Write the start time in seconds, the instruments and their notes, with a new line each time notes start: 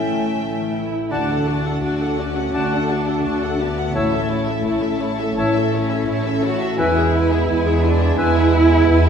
Already playing: double bass section A1, harp A2 E4, viola section A3, duduk C#4, violin section E5 G5
0.00 cello section A3
0.10 harp D3
0.36 harp E4
0.61 harp E3
0.74 cello section E4
0.87 harp E4
1.11 double bass section D2, harp D3, french horn section A3 F#4, cello section D4, viola section F#4, violin section D5 A5, clarinet D5, oboe F#5, flute A5
1.29 viola section A4, violin section F#5
1.46 viola section F#4, harp A4, violin section D5 A5
1.64 viola section A4, harp F#5, violin section F#5
1.82 double bass section D2, viola section F#4, violin section D5 A5, harp A5
2.00 viola section A4, violin section F#5, harp F#5
2.17 cello section C#4, viola section F#4, violin section D5 A5, harp D6
2.35 viola section A4, harp A4, violin section F#5
2.54 double bass section D2, harp A3, cello section D4, viola section F#4, clarinet D5, violin section D5 A5, oboe F#5, flute A5
2.70 viola section A4, violin section F#5
2.89 viola section F#4, harp A4, violin section D5 A5
3.06 viola section A4, violin section F#5, harp F#5
3.24 double bass section D2, viola section F#4, violin section D5 A5
3.42 viola section A4, violin section F#5, harp F#5
3.59 cello section B3, viola section F#4, harp D5, violin section D5 A5
3.77 harp A4, viola section A4, violin section F#5
3.94 double bass section A1, harp A2, cello section A3, french horn section C#4, viola section E4, clarinet C#5, violin section C#5 A5, oboe E5, flute A5
4.12 harp A3, viola section A4, violin section E5
4.30 viola section E4, harp E4, violin section C#5 A5
4.47 viola section A4, harp C#5, violin section E5
4.65 double bass section A1, viola section E4, violin section C#5 A5, harp E5
4.82 viola section A4, harp C#5, violin section E5
5.00 viola section E4, harp A4, violin section C#5 A5
5.19 harp E4, viola section A4, violin section E5
5.36 double bass section A1, harp E3, viola section E4, violin section C#5 A5, clarinet C#5, oboe E5, flute A5
5.54 harp A3, viola section A4, violin section E5
5.73 cello section C#4, harp E4, viola section E4, violin section C#5 A5
5.90 viola section A4, harp C#5, violin section E5
6.07 double bass section A1, viola section E4, violin section C#5 A5, harp E5
6.25 viola section A4, harp C#5, violin section E5
6.42 viola section E4, cello section F#4, harp A4, violin section C#5 A5
6.59 harp E4, viola section A4, violin section E5
6.77 double bass section E2, harp E3, french horn section G#3 B3, cello section E4, viola section E4, violin section B4 G#5, clarinet B4, oboe E5, flute G#5
6.95 harp B3, violin section G#4 E5, viola section G#4
7.13 viola section E4, harp G#4, violin section B4 G#5
7.31 violin section G#4 E5, viola section G#4
7.47 double bass section E2, viola section E4, violin section B4, harp G#5
7.51 violin section G#5
7.65 viola section G#4, violin section G#4 E5, harp E5
7.82 cello section D4, viola section E4, violin section B4 G#5, harp B4
7.99 violin section G#4 E5, viola section G#4, harp G#4
8.17 double bass section E2, harp G#3, cello section E4, viola section E4, violin section B4 G#5, clarinet B4, oboe E5, flute G#5
8.34 violin section G#4 E5, viola section G#4
8.52 viola section E4, violin section B4 G#5
8.69 violin section G#4, viola section G#4, harp E5
8.74 violin section E5
8.86 double bass section E2, viola section E4, violin section B4 G#5
9.06 violin section G#4, viola section G#4